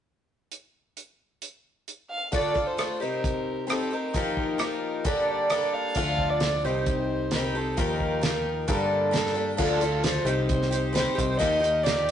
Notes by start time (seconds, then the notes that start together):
0.52 closed hi-hat
0.97 closed hi-hat
1.42 closed hi-hat
1.88 closed hi-hat
2.11 F5
2.32 D3 A3 D4 F4 A4 D5, kick, closed hi-hat
2.54 D4 F4 A4, kick
2.67 C5
2.77 A3 D4 F4 A4, cross-stick, closed hi-hat
3.00 C3 G3 C4 D#4 G4 A#4
3.24 kick, closed hi-hat
3.67 G3 C4 D#4 G4 A4, cross-stick, closed hi-hat
3.91 C4 D#4 G4 A#4
4.14 D#3 F3 A#3 D#4 G4, kick, closed hi-hat
4.37 A#4, kick
4.58 F3 A#3 D#4 G4, cross-stick, closed hi-hat
5.04 G2 D3 G3 A#3 D4 A4 D5, kick, closed hi-hat
5.30 D5
5.49 G3 A#3 D4 A4, cross-stick, closed hi-hat
5.74 F5
5.95 D2 D3 F3 D4 F4 A4, kick, closed hi-hat
6.18 kick
6.30 D5
6.40 F3 D4 F4 A4, snare, closed hi-hat
6.65 C2 C3 G3 C4 D#4 G4 C5
6.86 kick, closed hi-hat
7.31 G3 C4 D#4 A#4, snare, closed hi-hat
7.35 G4
7.55 C4 D#4 G4 A4
7.77 D#2 D#3 F3 A#3 D#4 G4 A#4, kick, closed hi-hat
8.00 kick
8.21 F3 A#3 D#4 G4, snare, closed hi-hat
8.68 G2 D3 G3 A#3 D4 A4 A#4, kick, closed hi-hat
8.89 A4
9.11 G3 A#3 D4 A4, snare, closed hi-hat
9.26 snare
9.34 G3 A#3 D4 A4
9.57 D2 D3 F3 D4 F4 A4, kick, crash
9.80 D4 F4 A4, closed hi-hat
10.03 F3 D4 F4 A4 C5, snare, closed hi-hat
10.25 C2 C3 G3 C4 D#4 G4, closed hi-hat
10.47 C5, kick, closed hi-hat
10.62 snare
10.71 C4 D#4 G4, closed hi-hat
10.93 G3 C4 D#4 G4 C5, snare, closed hi-hat
11.15 C2 C4 D#4 G4, kick, closed hi-hat
11.38 D#2 D#3 F3 A#3 D#4 G4 D#5, kick, closed hi-hat
11.60 A#3 D#4 G4
11.64 closed hi-hat
11.83 F3 A#3 D#4 G4 D5, snare, closed hi-hat